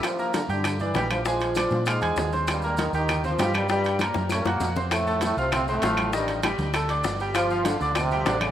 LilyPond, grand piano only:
\new Staff \with { instrumentName = "Grand piano" } { \time 4/4 \key g \dorian \tempo 4 = 197 r8 <bes bes' bes''>4 <g' g'' g'''>4 <d' d'' d'''>8 <g g' g''>4 | <aes aes' aes''>4 <d' d'' d'''>4 <f' f'' f'''>8 <aes' aes'' aes'''>4 <c' c'' c'''>8~ | <c' c'' c'''>8 <bes bes' bes''>4 <g' g'' g'''>4 <c' c'' c'''>8 <g g' g''>4 | <g g' g''>4 <bes bes' bes''>4 <cis' cis'' cis'''>8 <fis' fis'' fis'''>4 <c' c'' c'''>8~ |
<c' c'' c'''>8 <a a' a''>4 <f' f'' f'''>4 <c' c'' c'''>8 <f f' f''>4 | <ees ees' ees''>4 <g g' g''>4 <a a' a''>8 <d' d'' d'''>4 <g g' g''>8~ | <g g' g''>8 <f f' f''>4 <d' d'' d'''>4 <g g' g''>8 <d d' d''>4 | }